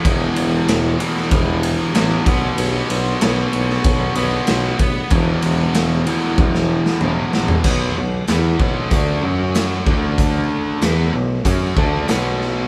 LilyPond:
<<
  \new Staff \with { instrumentName = "Overdriven electric guitar" } { \clef bass \time 4/4 \key e \major \tempo 4 = 95 <e, b, e>4. <e, b, e>4. <e, b, e>8 <b, fis b>8~ | <b, fis b>4 <b, fis b>4. <b, fis b>4 r8 | <e, b, e>4. <e, b, e>4. <e, b, e>4 | <b, fis b>8 <b, fis>8 <e b e'>8 <b, fis b>8 <d a d'>8 <fis cis' fis'>4 <d a d'>8~ |
<d a d'>4 <e b e'>8 <b, fis>8 <fis cis' fis'>8 <d a d'>8 <b, fis b>4 | }
  \new Staff \with { instrumentName = "Tuba" } { \clef bass \time 4/4 \key e \major e,,8 e,,8 e,,8 r8 e,,4 a,,8 b,,8 | b,,8 b,,8 b,,8 b,,8 b,,8 b,,8 b,,8 b,,8 | e,,8 e,,8 e,,8 r8 e,,4 e,,8 ais,,8 | b,,8 b,,8 e,8 b,,8 d,8 fis,4 d,8~ |
d,8 r8 e,8 b,,8 fis,8 d,8 b,,4 | }
  \new DrumStaff \with { instrumentName = "Drums" } \drummode { \time 4/4 <bd cymr>8 cymr8 <cymr sn>8 cymr16 sn16 <bd cymr>8 cymr8 <cymr sn>8 <bd cymr>8 | cymr8 cymr8 <cymr sn>8 cymr16 sn16 <bd cymr>8 cymr8 <cymr sn>8 <bd cymr>8 | <bd cymr>8 cymr8 <cymr sn>8 cymr8 <bd tommh>16 sn8 sn16 toml8 sn16 tomfh16 | <cymc bd>4 <hh sn>8 bd8 <hh bd>4 <hh sn>8 bd8 |
<hh bd>4 <hh sn>4 <hh bd>8 bd8 <hh sn>8 sn8 | }
>>